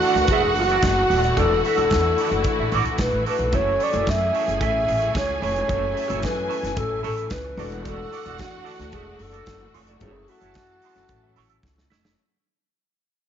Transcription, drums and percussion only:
0.02 open hi-hat medium
0.15 snare soft
0.15 closed hi-hat medium
0.27 kick loud
0.27 closed hi-hat medium
0.55 open hi-hat medium
0.69 closed hi-hat soft
0.82 kick loud
0.82 snare loud
0.82 closed hi-hat medium
1.11 open hi-hat medium
1.24 closed hi-hat soft
1.37 kick loud
1.37 closed hi-hat medium
1.65 open hi-hat medium
1.78 closed hi-hat medium
1.90 kick loud
1.90 snare loud
1.90 closed hi-hat medium
2.18 open hi-hat medium
2.32 closed hi-hat soft
2.44 kick loud
2.44 closed hi-hat medium
2.72 open hi-hat medium
2.86 closed hi-hat medium
2.98 kick loud
2.98 snare loud
2.98 closed hi-hat medium
3.26 open hi-hat medium
3.39 closed hi-hat medium
3.52 kick loud
3.52 closed hi-hat medium
3.80 open hi-hat medium
3.93 closed hi-hat medium
4.07 kick loud
4.07 snare loud
4.07 closed hi-hat medium
4.35 open hi-hat medium
4.49 closed hi-hat medium
4.61 kick loud
4.61 closed hi-hat medium
4.88 open hi-hat medium
5.02 closed hi-hat medium
5.15 kick loud
5.15 snare loud
5.15 closed hi-hat medium
5.43 open hi-hat medium
5.56 closed hi-hat soft
5.69 kick loud
5.69 closed hi-hat medium
5.97 open hi-hat medium
6.10 closed hi-hat medium
6.22 kick loud
6.22 snare loud
6.22 closed hi-hat medium
6.51 open hi-hat medium
6.64 snare soft
6.64 closed hi-hat medium
6.77 kick loud
6.77 closed hi-hat medium
7.04 open hi-hat medium
7.18 closed hi-hat soft
7.30 kick loud
7.30 snare loud
7.30 closed hi-hat medium
7.59 open hi-hat medium
7.72 closed hi-hat medium
7.85 kick loud
7.85 closed hi-hat medium
8.13 open hi-hat medium
8.26 closed hi-hat soft
8.38 kick loud
8.38 snare loud
8.38 closed hi-hat medium
8.66 open hi-hat medium
8.80 snare soft
8.80 closed hi-hat medium
8.92 kick loud
8.92 closed hi-hat medium
9.19 open hi-hat medium
9.34 closed hi-hat medium
9.46 kick loud
9.46 snare loud
9.46 closed hi-hat medium
9.74 open hi-hat medium
9.87 closed hi-hat medium
10.01 kick loud
10.01 closed hi-hat medium
10.28 open hi-hat medium
10.41 closed hi-hat medium
10.54 kick loud
10.54 snare loud
10.54 closed hi-hat medium
10.82 open hi-hat medium
10.96 snare soft
10.96 closed hi-hat soft
11.08 kick loud
11.08 closed hi-hat medium
11.36 open hi-hat medium
11.50 closed hi-hat medium
11.63 kick loud
11.63 snare medium
11.78 snare medium
11.92 snare loud
12.05 snare loud

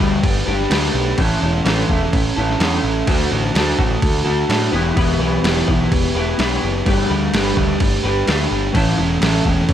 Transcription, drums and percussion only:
0.00 kick medium
0.24 kick loud
0.24 crash medium
0.61 snare soft
0.71 snare loud
0.71 crash medium
1.18 kick loud
1.18 crash medium
1.66 snare loud
1.66 crash medium
1.89 kick medium
2.13 kick loud
2.13 crash medium
2.50 snare soft
2.60 snare loud
2.60 crash medium
3.07 kick loud
3.07 crash medium
3.55 snare loud
3.55 crash medium
3.79 kick medium
4.02 kick loud
4.02 crash medium
4.50 snare loud
4.50 crash medium
4.97 kick loud
4.97 crash medium
5.44 snare loud
5.44 crash medium
5.68 kick medium
5.92 kick loud
5.92 crash medium
6.39 snare loud
6.39 crash medium
6.86 kick loud
6.86 crash medium
7.34 snare loud
7.34 crash medium
7.57 kick medium
7.80 kick loud
7.80 crash medium
8.27 snare loud
8.27 crash medium
8.75 kick loud
8.75 crash medium
9.22 snare loud
9.22 crash medium
9.45 kick medium
9.69 kick loud
9.69 crash medium

